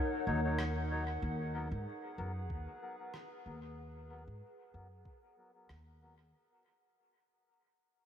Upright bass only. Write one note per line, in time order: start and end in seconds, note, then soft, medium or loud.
0.27 1.20 D#2 medium
1.22 1.68 D#2 medium
1.72 1.84 G#2 medium
2.18 2.50 F#2 medium
2.50 2.65 D#2 medium
3.46 4.24 D#2 medium
4.27 4.40 G#2 medium
4.74 5.02 F#2 medium
5.70 6.30 D#2 medium